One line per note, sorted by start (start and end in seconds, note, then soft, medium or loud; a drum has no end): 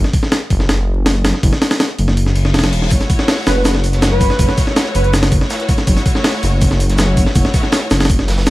0.04 snare soft
0.13 kick loud
0.13 open hi-hat medium
0.23 snare medium
0.32 snare loud
0.32 open hi-hat medium
0.50 0.59 F#1 medium
0.50 kick medium
0.50 open hi-hat medium
0.60 1.33 F#1 medium
0.60 snare medium
0.69 snare loud
0.69 open hi-hat medium
1.06 snare loud
1.06 open hi-hat medium
1.25 snare loud
1.25 open hi-hat medium
1.34 snare soft
1.43 1.52 F#1 loud
1.43 kick loud
1.43 open hi-hat medium
1.53 snare medium
1.62 snare loud
1.62 open hi-hat medium
1.71 snare loud
1.71 open hi-hat medium
1.80 snare loud
1.80 open hi-hat medium
1.99 2.07 F#1 medium
1.99 open hi-hat medium
2.08 2.34 F#1 medium
2.08 snare soft
2.17 open hi-hat medium
2.17 reverse cymbal medium
2.26 snare soft
2.36 2.56 F#1 loud
2.36 open hi-hat medium
2.45 snare soft
2.54 2.63 E1 loud
2.54 snare medium
2.54 open hi-hat medium
2.59 snare medium
2.59 open hi-hat medium
2.64 2.72 F#1 loud
2.64 snare loud
2.64 open hi-hat medium
2.73 2.90 E1 medium
2.73 open hi-hat medium
2.82 snare soft
2.91 3.00 F#1 loud
2.91 3.82 A3 medium
2.91 3.82 E4 medium
2.91 3.82 F#4 medium
2.91 3.82 C#5 loud
2.91 kick loud
2.91 open hi-hat medium
2.91 shaker medium
3.00 snare soft
3.00 closed hi-hat soft
3.10 kick loud
3.10 open hi-hat medium
3.10 shaker medium
3.19 snare soft
3.19 snare medium
3.28 snare loud
3.28 open hi-hat medium
3.47 3.55 F#1 medium
3.47 3.53 B4 medium
3.47 snare loud
3.47 open hi-hat medium
3.47 shaker medium
3.56 4.29 F#1 medium
3.56 3.62 B4 medium
3.65 snare loud
3.65 open hi-hat medium
3.65 shaker loud
3.75 snare medium
3.84 open hi-hat medium
3.84 shaker medium
3.93 4.37 A3 medium
3.93 4.37 E4 medium
3.93 4.37 F#4 medium
3.93 4.37 C#5 medium
3.93 snare soft
3.93 closed hi-hat soft
4.02 snare loud
4.02 open hi-hat medium
4.02 shaker medium
4.12 4.49 B4 medium
4.21 kick loud
4.21 open hi-hat medium
4.21 shaker medium
4.30 snare soft
4.39 4.48 F#1 loud
4.39 5.30 A3 medium
4.39 5.30 E4 medium
4.39 5.30 F#4 medium
4.39 5.30 C#5 loud
4.39 kick loud
4.39 open hi-hat medium
4.39 shaker medium
4.49 snare medium
4.57 kick loud
4.57 snare soft
4.57 open hi-hat medium
4.57 shaker medium
4.67 snare soft
4.76 snare loud
4.76 open hi-hat medium
4.76 shaker medium
4.86 closed hi-hat soft
4.95 5.03 F#1 medium
4.95 5.01 B4 medium
4.95 open hi-hat medium
4.95 shaker medium
5.04 5.31 F#1 medium
5.04 5.10 B4 medium
5.04 closed hi-hat soft
5.13 snare loud
5.13 open hi-hat medium
5.13 shaker medium
5.23 snare loud
5.23 open hi-hat medium
5.32 5.40 F#1 loud
5.32 kick loud
5.32 open hi-hat medium
5.32 shaker medium
5.41 5.85 A3 medium
5.41 5.85 E4 medium
5.41 5.85 F#4 medium
5.41 5.85 C#5 loud
5.41 snare soft
5.50 snare loud
5.50 open hi-hat medium
5.50 shaker medium
5.60 snare soft
5.60 closed hi-hat soft
5.69 kick loud
5.69 open hi-hat medium
5.69 shaker medium
5.78 snare medium
5.78 closed hi-hat soft
5.87 5.96 F#1 loud
5.87 6.78 A3 medium
5.87 6.78 E4 medium
5.87 6.78 F#4 medium
5.87 6.78 C#5 loud
5.87 kick loud
5.87 open hi-hat medium
5.87 shaker medium
5.97 snare soft
5.97 closed hi-hat soft
6.06 kick loud
6.06 open hi-hat medium
6.06 shaker medium
6.15 snare medium
6.15 snare soft
6.24 snare loud
6.24 open hi-hat medium
6.43 6.52 F#1 medium
6.43 open hi-hat medium
6.43 shaker medium
6.53 7.25 F#1 medium
6.61 kick loud
6.61 open hi-hat medium
6.61 shaker medium
6.71 snare medium
6.80 open hi-hat medium
6.80 shaker medium
6.89 7.33 A3 medium
6.89 7.33 E4 medium
6.89 7.33 F#4 medium
6.89 7.33 C#5 loud
6.89 snare soft
6.89 closed hi-hat soft
6.98 snare loud
6.98 open hi-hat medium
6.98 shaker medium
7.17 kick medium
7.17 open hi-hat medium
7.17 shaker medium
7.26 snare soft
7.35 7.44 F#1 loud
7.35 8.26 A3 medium
7.35 8.26 E4 medium
7.35 8.26 F#4 medium
7.35 8.26 C#5 loud
7.35 kick loud
7.35 open hi-hat medium
7.35 shaker medium
7.45 snare medium
7.54 kick medium
7.54 snare soft
7.54 open hi-hat medium
7.54 shaker medium
7.63 snare soft
7.72 snare loud
7.72 open hi-hat medium
7.72 shaker medium
7.81 closed hi-hat soft
7.90 8.00 F#1 medium
7.90 snare loud
7.90 open hi-hat medium
7.90 shaker medium
8.00 8.27 F#1 medium
8.00 snare medium
8.00 open hi-hat medium
8.05 snare medium
8.05 open hi-hat medium
8.10 kick loud
8.10 open hi-hat medium
8.10 shaker medium
8.19 snare soft
8.28 8.48 F#1 loud
8.28 snare loud
8.28 open hi-hat medium
8.38 snare loud
8.38 open hi-hat medium
8.46 8.50 E1 loud
8.46 8.50 A3 medium
8.46 snare loud
8.46 open hi-hat medium
8.46 shaker medium